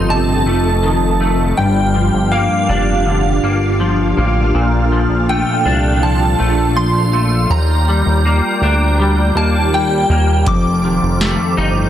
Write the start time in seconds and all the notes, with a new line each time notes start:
Already playing: G1 F2 D#3 A3 C4 D#4 F4 A4 D#5
0.09 C3 A5
0.46 F1 A3
0.83 D#3
1.20 A3
1.57 G1 G2 D4 F4 G4 F5 G5
1.95 F3
2.13 G1
2.32 A#3 F5
2.69 F1 D4
3.06 D3
3.43 G1 A#3
3.80 F3
4.17 A1 A#3
4.53 A#1 A#2 A4
4.92 F3
5.10 A#1
5.29 A3 G5
5.65 C2 D4
6.03 F3 A5
6.39 A#1 A3
6.76 F3 C6
7.13 A3
7.50 D#2 G4 D5 G5 A#5
7.88 G3
8.06 D#2
8.25 A#3
8.61 D2 D4
8.99 G3
9.35 D#2 A#3 A5
9.73 G3 G5
10.09 D#2 A#3
10.46 F1 F2 A4 C5 F5 D6, kick, closed hi-hat
10.84 D#3
11.02 F1
11.21 A3, snare, closed hi-hat
11.57 G1 D#4